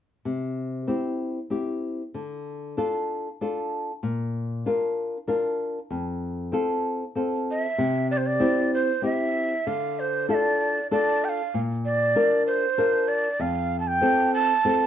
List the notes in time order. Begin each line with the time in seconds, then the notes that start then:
0.25 C3
0.87 C4 E4 G4
1.50 C4 E4 G4
2.14 D3
2.77 D4 F4 A4
3.41 D4 F4 A4
4.03 A#2
4.66 D4 F4 A#4
5.28 D4 F4 A#4
5.90 F2
6.52 C4 F4 A4
7.15 C4 F4 A4
7.51 E5
7.78 C3
8.11 D5
8.17 C5
8.26 D5
8.40 C4 E4 G4
8.74 C5
9.02 C4 E4 G4 E5
9.67 D3 F5
9.99 C5
10.28 D4 F4 A4 E5
10.34 D5
10.91 D4 F4 A4 D5
11.24 G5
11.29 F5
11.54 A#2
11.85 D5
12.16 D4 F4 A#4
12.47 C5
12.78 D4 F4 A#4
13.08 D5
13.39 F2 F5
13.80 A5
13.88 G5
14.01 C4 F4 A4
14.34 A5
14.65 C4 F4 A4